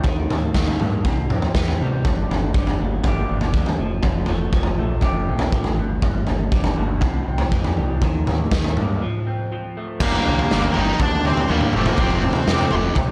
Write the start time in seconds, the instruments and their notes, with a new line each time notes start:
0.04 fingered electric bass D#2, clean electric guitar D#3, kick, floor tom
0.30 fingered electric bass D#2, clean electric guitar A#3, floor tom, mid tom
0.55 fingered electric bass D#2, clean electric guitar D#3, kick, snare
0.68 floor tom
0.80 fingered electric bass G2, clean electric guitar A#3, mid tom
1.05 fingered electric bass C2, clean electric guitar C3, kick, floor tom
1.30 fingered electric bass F2, clean electric guitar C4, mid tom
1.42 floor tom
1.55 fingered electric bass E2, clean electric guitar E3, kick, snare
1.68 floor tom
1.81 fingered electric bass C3, clean electric guitar G3
2.05 fingered electric bass G1, clean electric guitar G2, kick, floor tom
2.31 fingered electric bass G1, clean electric guitar D3, floor tom
2.54 fingered electric bass G1, clean electric guitar G3, kick
2.67 floor tom
2.82 fingered electric bass G1, clean electric guitar A#3
3.04 fingered electric bass G1, clean electric guitar G4, kick, floor tom
3.30 fingered electric bass G1, clean electric guitar D4
3.41 floor tom
3.54 fingered electric bass D#2, clean electric guitar G3, kick
3.66 floor tom
3.79 fingered electric bass F1, clean electric guitar F3
4.03 fingered electric bass F1, clean electric guitar F3, kick, floor tom
4.26 fingered electric bass F1, clean electric guitar A3, floor tom
4.53 fingered electric bass F1, clean electric guitar F3, kick
4.63 floor tom
4.78 fingered electric bass A#1, clean electric guitar A3
5.01 fingered electric bass F1, clean electric guitar G4, kick, floor tom
5.29 fingered electric bass A#1, clean electric guitar C4
5.39 floor tom
5.52 fingered electric bass A1, clean electric guitar F3, kick
5.64 floor tom
5.78 fingered electric bass G1, clean electric guitar G2
6.02 fingered electric bass G1, clean electric guitar G2, kick, floor tom
6.27 fingered electric bass G1, clean electric guitar D3, floor tom
6.52 fingered electric bass G1, clean electric guitar G3, kick
6.64 floor tom
6.78 fingered electric bass G1, clean electric guitar A#3
7.01 fingered electric bass C2, clean electric guitar C3, kick, floor tom
7.28 fingered electric bass C2, clean electric guitar C4
7.38 floor tom
7.52 fingered electric bass F2, clean electric guitar E3, kick
7.64 floor tom
7.77 fingered electric bass C2, clean electric guitar G3
8.02 fingered electric bass D#2, clean electric guitar D#3, kick, floor tom
8.27 fingered electric bass D#2, clean electric guitar A#3, floor tom, mid tom
8.51 fingered electric bass D#2, clean electric guitar D#3, kick, snare
8.64 floor tom
8.77 fingered electric bass G2, clean electric guitar A#3, mid tom
9.02 clean electric guitar F3
9.27 clean electric guitar C4
9.52 clean electric guitar F3
9.77 clean electric guitar A3
10.00 fingered electric bass G1, distorted electric guitar G2 D3 G3, clean electric guitar G2 D3 G3 A#3 D4, lead electric guitar A#3, kick, floor tom, crash
10.04 clean electric guitar G4, lead electric guitar A#4
10.12 floor tom
10.26 fingered electric bass C2, distorted electric guitar G2 D3, floor tom
10.39 floor tom
10.49 fingered electric bass G1, clean electric guitar G2 D3 G3 A#3 D4 G4, distorted electric guitar G2 D3, snare
10.62 floor tom
10.73 fingered electric bass G1, distorted electric guitar G2 D3 G3, clean electric guitar A#3 D4 G4, lead electric guitar D#4, floor tom
10.78 clean electric guitar G3, lead electric guitar D#5
11.00 fingered electric bass D2, distorted electric guitar G2 D3, lead electric guitar D4 D5, kick, floor tom
11.24 distorted electric guitar G2 D3, clean electric guitar G3 A#3 D4 G4, lead electric guitar C4 C5, floor tom
11.37 floor tom
11.48 fingered electric bass D#2, distorted electric guitar G2 D3 G3, clean electric guitar G3 A#3 D4 G4, lead electric guitar A#3 A#4
11.61 mid tom
11.73 fingered electric bass F1, distorted electric guitar F2 C3 F3, lead electric guitar A3 A4, clean electric guitar A3 C4 G4, mid tom
11.78 clean electric guitar F3
11.86 lead electric guitar A#3 A#4, floor tom, mid tom
11.97 fingered electric bass F1, distorted electric guitar F2 C3 F3, clean electric guitar F3 A3 C4, lead electric guitar C4 C5, kick, floor tom
12.02 clean electric guitar G4
12.10 floor tom
12.22 distorted electric guitar F2 C3, floor tom
12.33 floor tom
12.47 fingered electric bass F2, distorted electric guitar F2 C3, clean electric guitar F3 A3 C4 G4, snare
12.58 floor tom
12.71 fingered electric bass F1, distorted electric guitar F2 C3 F3, clean electric guitar C4 G4, floor tom
12.76 clean electric guitar A3
12.95 fingered electric bass A#1, distorted electric guitar F2 C3, kick, floor tom